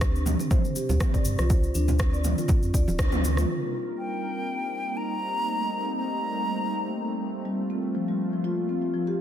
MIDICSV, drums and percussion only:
0, 0, Header, 1, 2, 480
1, 0, Start_track
1, 0, Tempo, 495868
1, 1453, Time_signature, 4, 2, 24, 8
1, 8914, End_track
2, 0, Start_track
2, 0, Title_t, "Drums"
2, 13, Note_on_c, 9, 36, 108
2, 13, Note_on_c, 9, 37, 100
2, 14, Note_on_c, 9, 69, 45
2, 23, Note_on_c, 9, 62, 37
2, 109, Note_off_c, 9, 36, 0
2, 109, Note_off_c, 9, 37, 0
2, 110, Note_off_c, 9, 69, 0
2, 120, Note_off_c, 9, 62, 0
2, 151, Note_on_c, 9, 69, 23
2, 248, Note_off_c, 9, 69, 0
2, 250, Note_on_c, 9, 63, 62
2, 252, Note_on_c, 9, 45, 79
2, 253, Note_on_c, 9, 69, 86
2, 257, Note_on_c, 9, 64, 84
2, 347, Note_off_c, 9, 63, 0
2, 349, Note_off_c, 9, 45, 0
2, 350, Note_off_c, 9, 69, 0
2, 353, Note_off_c, 9, 64, 0
2, 381, Note_on_c, 9, 62, 49
2, 387, Note_on_c, 9, 69, 37
2, 478, Note_off_c, 9, 62, 0
2, 484, Note_off_c, 9, 69, 0
2, 490, Note_on_c, 9, 64, 89
2, 492, Note_on_c, 9, 69, 44
2, 493, Note_on_c, 9, 36, 105
2, 493, Note_on_c, 9, 45, 82
2, 586, Note_off_c, 9, 64, 0
2, 589, Note_off_c, 9, 69, 0
2, 590, Note_off_c, 9, 36, 0
2, 590, Note_off_c, 9, 45, 0
2, 626, Note_on_c, 9, 69, 26
2, 722, Note_off_c, 9, 69, 0
2, 733, Note_on_c, 9, 69, 85
2, 734, Note_on_c, 9, 62, 35
2, 829, Note_off_c, 9, 69, 0
2, 830, Note_off_c, 9, 62, 0
2, 863, Note_on_c, 9, 64, 90
2, 865, Note_on_c, 9, 69, 39
2, 960, Note_off_c, 9, 64, 0
2, 962, Note_off_c, 9, 69, 0
2, 971, Note_on_c, 9, 63, 86
2, 971, Note_on_c, 9, 69, 52
2, 973, Note_on_c, 9, 36, 105
2, 973, Note_on_c, 9, 37, 94
2, 973, Note_on_c, 9, 45, 90
2, 1068, Note_off_c, 9, 63, 0
2, 1068, Note_off_c, 9, 69, 0
2, 1069, Note_off_c, 9, 36, 0
2, 1070, Note_off_c, 9, 37, 0
2, 1070, Note_off_c, 9, 45, 0
2, 1104, Note_on_c, 9, 36, 57
2, 1105, Note_on_c, 9, 69, 26
2, 1107, Note_on_c, 9, 62, 50
2, 1201, Note_off_c, 9, 36, 0
2, 1202, Note_off_c, 9, 69, 0
2, 1204, Note_off_c, 9, 62, 0
2, 1209, Note_on_c, 9, 69, 88
2, 1306, Note_off_c, 9, 69, 0
2, 1340, Note_on_c, 9, 69, 35
2, 1344, Note_on_c, 9, 37, 58
2, 1351, Note_on_c, 9, 63, 60
2, 1437, Note_off_c, 9, 69, 0
2, 1441, Note_off_c, 9, 37, 0
2, 1448, Note_off_c, 9, 63, 0
2, 1450, Note_on_c, 9, 62, 56
2, 1451, Note_on_c, 9, 69, 46
2, 1453, Note_on_c, 9, 36, 110
2, 1547, Note_off_c, 9, 62, 0
2, 1547, Note_off_c, 9, 69, 0
2, 1550, Note_off_c, 9, 36, 0
2, 1582, Note_on_c, 9, 69, 27
2, 1679, Note_off_c, 9, 69, 0
2, 1691, Note_on_c, 9, 69, 83
2, 1694, Note_on_c, 9, 63, 56
2, 1787, Note_off_c, 9, 69, 0
2, 1791, Note_off_c, 9, 63, 0
2, 1821, Note_on_c, 9, 64, 92
2, 1821, Note_on_c, 9, 69, 36
2, 1918, Note_off_c, 9, 64, 0
2, 1918, Note_off_c, 9, 69, 0
2, 1925, Note_on_c, 9, 69, 49
2, 1933, Note_on_c, 9, 36, 111
2, 1933, Note_on_c, 9, 37, 103
2, 2022, Note_off_c, 9, 69, 0
2, 2030, Note_off_c, 9, 36, 0
2, 2030, Note_off_c, 9, 37, 0
2, 2069, Note_on_c, 9, 69, 23
2, 2166, Note_off_c, 9, 69, 0
2, 2170, Note_on_c, 9, 69, 78
2, 2173, Note_on_c, 9, 45, 79
2, 2173, Note_on_c, 9, 64, 83
2, 2179, Note_on_c, 9, 63, 55
2, 2267, Note_off_c, 9, 69, 0
2, 2269, Note_off_c, 9, 64, 0
2, 2270, Note_off_c, 9, 45, 0
2, 2276, Note_off_c, 9, 63, 0
2, 2304, Note_on_c, 9, 69, 39
2, 2307, Note_on_c, 9, 62, 52
2, 2401, Note_off_c, 9, 69, 0
2, 2402, Note_on_c, 9, 64, 95
2, 2403, Note_off_c, 9, 62, 0
2, 2405, Note_on_c, 9, 69, 51
2, 2413, Note_on_c, 9, 36, 109
2, 2498, Note_off_c, 9, 64, 0
2, 2502, Note_off_c, 9, 69, 0
2, 2510, Note_off_c, 9, 36, 0
2, 2542, Note_on_c, 9, 69, 26
2, 2639, Note_off_c, 9, 69, 0
2, 2653, Note_on_c, 9, 36, 57
2, 2653, Note_on_c, 9, 69, 82
2, 2660, Note_on_c, 9, 62, 38
2, 2750, Note_off_c, 9, 36, 0
2, 2750, Note_off_c, 9, 69, 0
2, 2757, Note_off_c, 9, 62, 0
2, 2785, Note_on_c, 9, 63, 98
2, 2790, Note_on_c, 9, 69, 36
2, 2882, Note_off_c, 9, 63, 0
2, 2887, Note_off_c, 9, 69, 0
2, 2891, Note_on_c, 9, 69, 47
2, 2893, Note_on_c, 9, 36, 113
2, 2893, Note_on_c, 9, 37, 96
2, 2893, Note_on_c, 9, 48, 58
2, 2988, Note_off_c, 9, 69, 0
2, 2990, Note_off_c, 9, 36, 0
2, 2990, Note_off_c, 9, 37, 0
2, 2990, Note_off_c, 9, 48, 0
2, 3020, Note_on_c, 9, 62, 50
2, 3025, Note_on_c, 9, 45, 98
2, 3025, Note_on_c, 9, 48, 62
2, 3026, Note_on_c, 9, 69, 23
2, 3117, Note_off_c, 9, 62, 0
2, 3122, Note_off_c, 9, 45, 0
2, 3122, Note_off_c, 9, 48, 0
2, 3123, Note_off_c, 9, 69, 0
2, 3138, Note_on_c, 9, 63, 93
2, 3140, Note_on_c, 9, 69, 78
2, 3235, Note_off_c, 9, 63, 0
2, 3237, Note_off_c, 9, 69, 0
2, 3265, Note_on_c, 9, 37, 61
2, 3265, Note_on_c, 9, 45, 84
2, 3271, Note_on_c, 9, 69, 35
2, 3362, Note_off_c, 9, 37, 0
2, 3362, Note_off_c, 9, 45, 0
2, 3368, Note_off_c, 9, 69, 0
2, 8914, End_track
0, 0, End_of_file